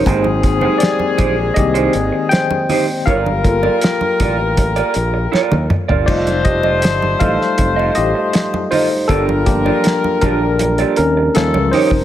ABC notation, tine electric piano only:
X:1
M:4/4
L:1/8
Q:1/4=80
K:Gm
V:1 name="Tine electric piano"
[Ec]2 [Gd]2 [Ge]2 [cg]2 | [Bf]2 z6 | [Fd] [Ge]2 [Af]2 [Ge]2 [Ec] | [DA] [B,G]2 [DB]2 [^CB]2 [E=c] |]
V:2 name="Tine electric piano"
[_A,B,C]4 [E,B,C] z3 | z [B,FA]6- [B,FA] | [G,A,E]3 [G,A,E] z4 | z [F,G,D] z4 [F,G,_D]2 |]